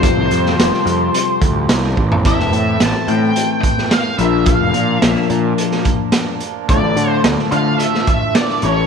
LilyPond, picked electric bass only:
\new Staff \with { instrumentName = "Picked electric bass" } { \clef bass \time 4/4 \key d \minor \tempo 4 = 108 r16 c,16 f,8 f,,16 r16 f,8 r8 d,8 c,8 a,,8 | a,,16 e,,16 a,8 a,,16 r16 a,8 r4. bes,,8~ | bes,,16 f,,16 bes,8 bes,,16 r16 bes,8 r2 | d,16 a,,16 d8 d,16 r16 d8 r4. a,,8 | }